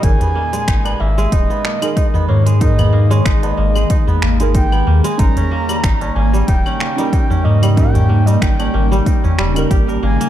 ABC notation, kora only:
X:1
M:4/4
L:1/16
Q:"Swing 16ths" 1/4=93
K:D#phr
V:1 name="Kora"
D B, A, G, D B, A, G, D B, A, G, D B, A, G, | D B, A, G, D B, A, G, D B, A, G, D B, A, G, | D C A, =G, D C A, G, D C A, G, D C A, G, | D C A, =G, D C A, G, D C G, A =G A A, A, |]